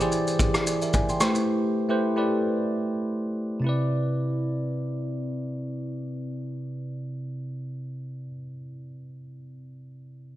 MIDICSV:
0, 0, Header, 1, 3, 480
1, 0, Start_track
1, 0, Key_signature, 0, "major"
1, 0, Tempo, 540541
1, 1310, Time_signature, 4, 2, 24, 8
1, 9203, End_track
2, 0, Start_track
2, 0, Title_t, "Tine electric piano"
2, 0, Program_c, 0, 4
2, 0, Control_c, 0, 64, 127
2, 0, Note_on_c, 0, 52, 83
2, 0, Note_on_c, 0, 64, 78
2, 0, Note_on_c, 0, 67, 81
2, 0, Note_on_c, 0, 68, 78
2, 0, Note_on_c, 0, 72, 82
2, 0, Note_on_c, 0, 74, 90
2, 3, Note_off_c, 0, 64, 0
2, 3, Note_on_c, 0, 64, 74
2, 7, Note_off_c, 0, 67, 0
2, 7, Note_on_c, 0, 67, 79
2, 11, Note_off_c, 0, 68, 0
2, 11, Note_on_c, 0, 68, 76
2, 16, Note_off_c, 0, 72, 0
2, 16, Note_on_c, 0, 72, 77
2, 19, Note_off_c, 0, 74, 0
2, 19, Note_on_c, 0, 74, 92
2, 587, Note_off_c, 0, 74, 0
2, 592, Note_off_c, 0, 67, 0
2, 595, Note_off_c, 0, 68, 0
2, 597, Note_off_c, 0, 72, 0
2, 598, Note_on_c, 0, 74, 62
2, 604, Note_on_c, 0, 68, 56
2, 720, Note_off_c, 0, 74, 0
2, 723, Note_off_c, 0, 68, 0
2, 729, Note_on_c, 0, 76, 66
2, 734, Note_on_c, 0, 70, 61
2, 764, Note_off_c, 0, 52, 0
2, 766, Note_off_c, 0, 64, 0
2, 829, Note_off_c, 0, 76, 0
2, 831, Note_off_c, 0, 70, 0
2, 838, Note_on_c, 0, 80, 67
2, 842, Note_on_c, 0, 74, 59
2, 960, Note_off_c, 0, 80, 0
2, 962, Note_off_c, 0, 74, 0
2, 972, Note_on_c, 0, 84, 65
2, 978, Note_on_c, 0, 79, 55
2, 1067, Note_on_c, 0, 57, 89
2, 1072, Note_on_c, 0, 64, 84
2, 1077, Note_on_c, 0, 67, 80
2, 1082, Note_on_c, 0, 71, 77
2, 1083, Control_c, 0, 64, 0
2, 1088, Note_on_c, 0, 72, 98
2, 1196, Note_off_c, 0, 84, 0
2, 1198, Note_off_c, 0, 79, 0
2, 1247, Control_c, 0, 64, 127
2, 1548, Note_off_c, 0, 57, 0
2, 1551, Note_off_c, 0, 64, 0
2, 1554, Note_off_c, 0, 67, 0
2, 1556, Note_off_c, 0, 71, 0
2, 1559, Note_off_c, 0, 72, 0
2, 1676, Note_on_c, 0, 57, 88
2, 1680, Note_on_c, 0, 64, 75
2, 1686, Note_on_c, 0, 67, 78
2, 1690, Note_on_c, 0, 71, 78
2, 1696, Note_on_c, 0, 72, 95
2, 1866, Note_off_c, 0, 57, 0
2, 1868, Note_off_c, 0, 64, 0
2, 1871, Note_off_c, 0, 67, 0
2, 1873, Note_off_c, 0, 71, 0
2, 1876, Note_off_c, 0, 72, 0
2, 1919, Note_on_c, 0, 57, 83
2, 1923, Note_on_c, 0, 64, 77
2, 1929, Note_on_c, 0, 67, 73
2, 1934, Note_on_c, 0, 71, 77
2, 1939, Note_on_c, 0, 74, 92
2, 2684, Note_off_c, 0, 57, 0
2, 2686, Note_off_c, 0, 64, 0
2, 2689, Note_off_c, 0, 67, 0
2, 2691, Note_off_c, 0, 71, 0
2, 2694, Note_off_c, 0, 74, 0
2, 3194, Note_on_c, 0, 48, 77
2, 3214, Note_on_c, 0, 60, 71
2, 3235, Note_on_c, 0, 64, 68
2, 3242, Control_c, 0, 64, 0
2, 3255, Note_on_c, 0, 71, 73
2, 3276, Note_on_c, 0, 74, 85
2, 3384, Control_c, 0, 64, 127
2, 7319, Note_off_c, 0, 48, 0
2, 7338, Note_off_c, 0, 60, 0
2, 7359, Note_off_c, 0, 64, 0
2, 7380, Note_off_c, 0, 71, 0
2, 7401, Note_off_c, 0, 74, 0
2, 9203, End_track
3, 0, Start_track
3, 0, Title_t, "Drums"
3, 4, Note_on_c, 9, 82, 44
3, 93, Note_off_c, 9, 82, 0
3, 105, Note_on_c, 9, 82, 74
3, 194, Note_off_c, 9, 82, 0
3, 243, Note_on_c, 9, 82, 48
3, 332, Note_off_c, 9, 82, 0
3, 350, Note_on_c, 9, 36, 100
3, 351, Note_on_c, 9, 82, 72
3, 439, Note_off_c, 9, 36, 0
3, 440, Note_off_c, 9, 82, 0
3, 482, Note_on_c, 9, 37, 85
3, 483, Note_on_c, 9, 82, 46
3, 571, Note_off_c, 9, 37, 0
3, 572, Note_off_c, 9, 82, 0
3, 593, Note_on_c, 9, 82, 91
3, 682, Note_off_c, 9, 82, 0
3, 726, Note_on_c, 9, 82, 45
3, 814, Note_off_c, 9, 82, 0
3, 829, Note_on_c, 9, 82, 77
3, 833, Note_on_c, 9, 36, 93
3, 917, Note_off_c, 9, 82, 0
3, 922, Note_off_c, 9, 36, 0
3, 967, Note_on_c, 9, 82, 43
3, 1056, Note_off_c, 9, 82, 0
3, 1069, Note_on_c, 9, 82, 90
3, 1070, Note_on_c, 9, 37, 85
3, 1157, Note_off_c, 9, 82, 0
3, 1159, Note_off_c, 9, 37, 0
3, 1199, Note_on_c, 9, 82, 57
3, 1288, Note_off_c, 9, 82, 0
3, 9203, End_track
0, 0, End_of_file